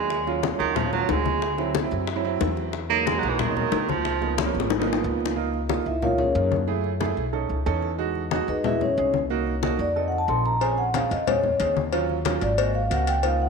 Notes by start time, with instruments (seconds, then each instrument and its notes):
Already playing: upright bass D#2, baritone saxophone G#3
0.10 high bongo, high conga
0.27 grand piano F#3 C#4 F4, high bongo, high conga
0.43 high bongo, high conga
0.52 grand piano F#3 C#4 F4
0.59 upright bass D#2, baritone saxophone D#3, high bongo, high conga
0.76 baritone saxophone F3, high bongo, high conga, low conga
0.85 grand piano F#3 C#4 F4
0.93 grand piano F#3 C#4 F4, baritone saxophone F#3, high conga, low conga
1.09 upright bass D2, baritone saxophone G#3, high bongo, low bongo, high conga
1.25 high bongo, high conga
1.42 high bongo
1.58 grand piano F#3 C4 E4, high bongo, high conga
1.75 high bongo, high conga
1.82 grand piano F#3 C4 E4
1.91 upright bass F#2, high bongo, high conga
2.07 high bongo, high conga
2.16 grand piano F#3 C4 E4
2.25 grand piano F#3 C4 E4, high conga
2.41 upright bass E2, high bongo, low bongo, high conga
2.57 high bongo, high conga
2.73 high bongo, high conga
2.90 grand piano F#3 G#3 A#3 D#4, baritone saxophone A#3, high bongo, high conga
3.07 baritone saxophone G#3, high bongo, high conga
3.15 grand piano F#3 G#3 A#3 D#4, baritone saxophone F#3
3.23 upright bass B1, high bongo, high conga
3.29 baritone saxophone E3
3.39 baritone saxophone D#3, high bongo, high conga, low conga
3.48 grand piano F#3 G#3 A#3 D#4
3.55 grand piano F#3 G#3 A#3 D#4, high conga, low conga
3.72 upright bass C#2, high bongo, low bongo, high conga
3.89 baritone saxophone F3, high bongo, high conga
4.05 high bongo, high conga
4.21 grand piano F3 A#3 B3 D#4, high bongo, high conga
4.38 high bongo, high conga
4.46 grand piano F3 A#3 B3 C#4
4.55 upright bass G#1, high conga
4.60 high bongo
4.70 low bongo, high conga
4.79 grand piano F3 A#3 B3 D#4, low bongo
4.87 grand piano F3 A#3 B3 D#4, high conga
4.93 low bongo
5.04 upright bass C#2, high conga
5.20 high conga
5.26 low bongo
5.36 grand piano A#3 D#4 F4, high conga
5.53 high conga
5.69 grand piano A#3 D#4 F4, high conga
5.86 upright bass C#2, vibraphone E4 E5, high conga
6.02 grand piano A#3 D#4 F4, vibraphone F4 A#4 C#5 F5, high conga, low conga
6.18 vibraphone C#4 G#4 A#4 C#5, high conga, low conga
6.35 upright bass F#2, grand piano A#3 D#4 F4, vibraphone C#4 G#4 A#4 C#5, high conga
6.52 high conga
6.67 grand piano A3 E4 G#4, high conga
6.84 high conga
7.00 grand piano A3 E4 G#4, high conga
7.17 upright bass B1, high conga
7.33 grand piano C#4 D#4 A4, high conga
7.49 upright bass C#2, high conga
7.66 upright bass E2, grand piano C#4 D#4 A4, high conga
7.82 high conga
7.98 grand piano G#3 D#4 F#4, high conga
8.15 high conga
8.31 grand piano G#3 D#4 F#4, high conga
8.48 upright bass E2, vibraphone D#4 G#4 B4 D#5, high conga
8.64 grand piano G#3 D#4 F#4, vibraphone E4 G#4 B4 E5, high conga, low conga
8.81 vibraphone C#4 C#5, high conga, low conga
8.97 upright bass C2, grand piano G#3 D#4 G#4, vibraphone C#4 C#5, high conga
9.14 high conga
9.30 grand piano A#3 D#4 F#4, high conga
9.47 high conga
9.63 grand piano A#3 D#4 F#4, high conga
9.79 upright bass F2, vibraphone D5, high conga
9.96 grand piano C4 D#4 A4, vibraphone D#5, high conga
10.08 vibraphone F#5
10.12 high conga
10.18 vibraphone A5
10.28 upright bass A#1, grand piano C4 D#4 A4, vibraphone C6, high conga
10.45 vibraphone A#5, high conga
10.61 grand piano C4 C#4 G#4, vibraphone G#5, cowbell, high conga
10.78 vibraphone F#5, high conga
10.94 grand piano C4 C#4 G#4, vibraphone F5, cowbell, high conga
11.10 upright bass F2, vibraphone D#5, cowbell, high conga
11.27 grand piano C4 C#4 G#4, vibraphone C#5, cowbell, high conga, low conga
11.43 high conga, low conga
11.59 upright bass D#2, grand piano C4 C#4 G#4, cowbell, high conga
11.77 high conga
11.92 grand piano F#3 C#4 F4, cowbell, high conga
12.09 high conga
12.25 grand piano F#3 C#4 F4, cowbell, high conga
12.41 upright bass G#1, vibraphone D5, cowbell, high conga
12.58 grand piano A#3 C4 F#4, vibraphone D#5, cowbell, high conga
12.75 vibraphone F5, high conga
12.90 upright bass C#2, grand piano A#3 C4 F#4, vibraphone F#5, cowbell, high conga
13.07 vibraphone G5, cowbell, high conga
13.23 grand piano A#3 D#4 F4, vibraphone F5, cowbell, high conga
13.40 vibraphone F#5, high conga